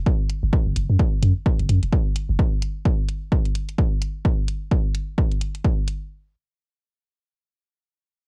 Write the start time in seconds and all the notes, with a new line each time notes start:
0.06 kick
0.30 closed hi-hat
0.43 F#1
0.53 kick
0.66 F#1
0.76 F#1, closed hi-hat
0.90 F#2
0.99 kick
1.23 F#2, closed hi-hat
1.46 kick
1.59 F#1, closed hi-hat
1.69 F#2, closed hi-hat
1.83 E1, closed hi-hat
1.92 kick
2.16 closed hi-hat
2.29 F#1
2.39 kick
2.62 closed hi-hat
2.85 kick
3.09 closed hi-hat
3.32 kick
3.45 closed hi-hat
3.55 closed hi-hat
3.69 closed hi-hat
3.78 kick
4.02 closed hi-hat
4.25 kick
4.48 closed hi-hat
4.71 kick
4.95 closed hi-hat
5.18 kick
5.32 closed hi-hat
5.41 closed hi-hat
5.55 closed hi-hat
5.64 kick
5.88 closed hi-hat